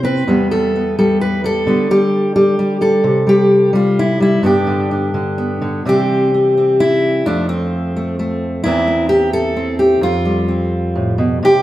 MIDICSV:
0, 0, Header, 1, 2, 480
1, 0, Start_track
1, 0, Tempo, 465477
1, 273, Time_signature, 3, 2, 24, 8
1, 11986, End_track
2, 0, Start_track
2, 0, Title_t, "Steel-string acoustic guitar"
2, 0, Program_c, 0, 25
2, 0, Note_on_c, 0, 48, 59
2, 0, Note_on_c, 0, 64, 46
2, 0, Note_on_c, 0, 67, 42
2, 34, Note_on_c, 0, 60, 54
2, 47, Note_on_c, 0, 71, 82
2, 245, Note_off_c, 0, 48, 0
2, 246, Note_off_c, 0, 60, 0
2, 253, Note_off_c, 0, 64, 0
2, 281, Note_on_c, 0, 40, 56
2, 287, Note_on_c, 0, 55, 43
2, 293, Note_off_c, 0, 67, 0
2, 297, Note_on_c, 0, 59, 43
2, 525, Note_off_c, 0, 71, 0
2, 530, Note_on_c, 0, 69, 75
2, 531, Note_off_c, 0, 55, 0
2, 535, Note_on_c, 0, 55, 53
2, 776, Note_off_c, 0, 59, 0
2, 780, Note_on_c, 0, 59, 35
2, 1004, Note_off_c, 0, 69, 0
2, 1012, Note_off_c, 0, 55, 0
2, 1016, Note_on_c, 0, 55, 57
2, 1017, Note_on_c, 0, 69, 75
2, 1246, Note_off_c, 0, 69, 0
2, 1252, Note_on_c, 0, 71, 80
2, 1482, Note_off_c, 0, 55, 0
2, 1484, Note_off_c, 0, 71, 0
2, 1486, Note_on_c, 0, 55, 58
2, 1501, Note_on_c, 0, 69, 86
2, 1716, Note_off_c, 0, 55, 0
2, 1719, Note_off_c, 0, 40, 0
2, 1720, Note_on_c, 0, 50, 65
2, 1722, Note_off_c, 0, 59, 0
2, 1727, Note_on_c, 0, 55, 42
2, 1734, Note_on_c, 0, 59, 44
2, 1960, Note_off_c, 0, 55, 0
2, 1962, Note_off_c, 0, 59, 0
2, 1964, Note_on_c, 0, 55, 54
2, 1970, Note_on_c, 0, 67, 88
2, 2416, Note_off_c, 0, 67, 0
2, 2426, Note_off_c, 0, 55, 0
2, 2430, Note_on_c, 0, 55, 52
2, 2431, Note_on_c, 0, 67, 78
2, 2440, Note_off_c, 0, 69, 0
2, 2666, Note_off_c, 0, 55, 0
2, 2670, Note_on_c, 0, 55, 49
2, 2893, Note_off_c, 0, 55, 0
2, 2897, Note_on_c, 0, 55, 62
2, 2903, Note_on_c, 0, 69, 78
2, 3132, Note_on_c, 0, 48, 61
2, 3140, Note_off_c, 0, 67, 0
2, 3142, Note_off_c, 0, 50, 0
2, 3364, Note_off_c, 0, 55, 0
2, 3368, Note_on_c, 0, 55, 57
2, 3392, Note_on_c, 0, 67, 86
2, 3842, Note_off_c, 0, 55, 0
2, 3846, Note_on_c, 0, 55, 58
2, 3859, Note_off_c, 0, 69, 0
2, 3865, Note_off_c, 0, 67, 0
2, 3871, Note_on_c, 0, 65, 71
2, 4105, Note_off_c, 0, 65, 0
2, 4117, Note_on_c, 0, 64, 81
2, 4330, Note_off_c, 0, 55, 0
2, 4334, Note_on_c, 0, 55, 62
2, 4343, Note_off_c, 0, 64, 0
2, 4356, Note_on_c, 0, 64, 73
2, 4546, Note_off_c, 0, 48, 0
2, 4564, Note_on_c, 0, 43, 67
2, 4572, Note_on_c, 0, 50, 45
2, 4576, Note_off_c, 0, 55, 0
2, 4580, Note_on_c, 0, 59, 45
2, 4585, Note_on_c, 0, 62, 44
2, 4587, Note_off_c, 0, 64, 0
2, 4600, Note_on_c, 0, 67, 76
2, 4801, Note_off_c, 0, 50, 0
2, 4813, Note_on_c, 0, 50, 54
2, 5053, Note_off_c, 0, 62, 0
2, 5065, Note_on_c, 0, 62, 40
2, 5289, Note_off_c, 0, 50, 0
2, 5301, Note_on_c, 0, 50, 54
2, 5536, Note_off_c, 0, 59, 0
2, 5549, Note_on_c, 0, 59, 42
2, 5778, Note_off_c, 0, 50, 0
2, 5790, Note_on_c, 0, 50, 62
2, 5993, Note_off_c, 0, 43, 0
2, 6004, Note_off_c, 0, 59, 0
2, 6004, Note_off_c, 0, 62, 0
2, 6032, Note_off_c, 0, 50, 0
2, 6037, Note_on_c, 0, 48, 59
2, 6040, Note_off_c, 0, 67, 0
2, 6045, Note_on_c, 0, 52, 45
2, 6051, Note_on_c, 0, 55, 43
2, 6060, Note_on_c, 0, 60, 45
2, 6072, Note_on_c, 0, 67, 97
2, 6537, Note_off_c, 0, 60, 0
2, 6542, Note_on_c, 0, 60, 40
2, 6776, Note_off_c, 0, 60, 0
2, 6780, Note_on_c, 0, 60, 40
2, 7011, Note_off_c, 0, 67, 0
2, 7015, Note_on_c, 0, 64, 87
2, 7451, Note_off_c, 0, 48, 0
2, 7456, Note_off_c, 0, 52, 0
2, 7482, Note_on_c, 0, 41, 61
2, 7483, Note_off_c, 0, 60, 0
2, 7484, Note_off_c, 0, 64, 0
2, 7487, Note_off_c, 0, 55, 0
2, 7488, Note_on_c, 0, 62, 79
2, 7495, Note_on_c, 0, 53, 47
2, 7501, Note_on_c, 0, 57, 43
2, 7719, Note_off_c, 0, 62, 0
2, 7723, Note_on_c, 0, 60, 68
2, 8200, Note_off_c, 0, 57, 0
2, 8212, Note_on_c, 0, 57, 44
2, 8435, Note_off_c, 0, 57, 0
2, 8448, Note_on_c, 0, 57, 48
2, 8882, Note_off_c, 0, 41, 0
2, 8887, Note_off_c, 0, 57, 0
2, 8889, Note_off_c, 0, 53, 0
2, 8905, Note_on_c, 0, 64, 96
2, 8911, Note_off_c, 0, 60, 0
2, 8920, Note_on_c, 0, 40, 72
2, 8925, Note_on_c, 0, 52, 49
2, 8934, Note_on_c, 0, 58, 47
2, 8939, Note_on_c, 0, 60, 52
2, 9140, Note_off_c, 0, 58, 0
2, 9152, Note_on_c, 0, 58, 46
2, 9370, Note_off_c, 0, 64, 0
2, 9375, Note_on_c, 0, 67, 88
2, 9615, Note_off_c, 0, 67, 0
2, 9625, Note_on_c, 0, 69, 97
2, 9860, Note_off_c, 0, 60, 0
2, 9864, Note_on_c, 0, 60, 47
2, 10092, Note_off_c, 0, 69, 0
2, 10096, Note_on_c, 0, 67, 75
2, 10307, Note_off_c, 0, 58, 0
2, 10312, Note_off_c, 0, 52, 0
2, 10320, Note_off_c, 0, 40, 0
2, 10324, Note_on_c, 0, 41, 64
2, 10334, Note_off_c, 0, 67, 0
2, 10344, Note_on_c, 0, 65, 85
2, 10573, Note_on_c, 0, 55, 42
2, 10806, Note_off_c, 0, 60, 0
2, 10810, Note_on_c, 0, 60, 38
2, 11297, Note_on_c, 0, 45, 55
2, 11526, Note_off_c, 0, 45, 0
2, 11530, Note_on_c, 0, 47, 62
2, 11550, Note_off_c, 0, 65, 0
2, 11755, Note_off_c, 0, 41, 0
2, 11758, Note_off_c, 0, 60, 0
2, 11779, Note_off_c, 0, 47, 0
2, 11783, Note_on_c, 0, 48, 65
2, 11806, Note_on_c, 0, 67, 94
2, 11986, Note_off_c, 0, 48, 0
2, 11986, Note_off_c, 0, 55, 0
2, 11986, Note_off_c, 0, 67, 0
2, 11986, End_track
0, 0, End_of_file